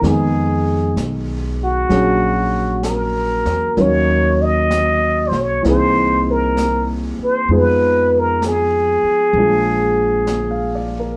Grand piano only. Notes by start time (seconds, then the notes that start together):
0.01 D#3 G#3 B3
0.05 D#4 G#4
1.89 F#3 A#3 C#4 D4 G#4
3.77 F#3 A#3 C#4 D#4 A#4
5.62 E3 A#3 C4
5.67 D#4 G#4
7.51 F3 G#3 B3 D#4 G#4
9.37 F3 G#3 A#3 D4 G#4
10.30 G#5
10.51 F5
10.75 D5
11.00 A#4